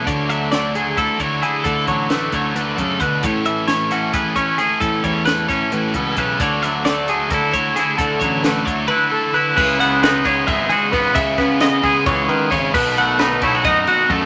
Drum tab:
CC |-------|-------|-------|-------|
RD |-------|-------|-------|-------|
HH |xxxxxxx|xxxxxxx|xxxxxxx|xxxxxxx|
SD |--o----|--o-o--|--oo--o|--oo---|
BD |o---oo-|oo-o-oo|o---oo-|oo-o-oo|

CC |-------|-------|x------|-------|
RD |-------|-------|-xxxxxx|xxxxxxx|
HH |xxxxxxx|xxxx---|-------|-------|
SD |-oo-o-o|--o----|--o---o|-oo---o|
BD |o---oo-|oo-o---|o--oo-o|oo-oo-o|

CC |x------|
RD |-xxxxxx|
HH |-------|
SD |--o-o--|
BD |o--oo-o|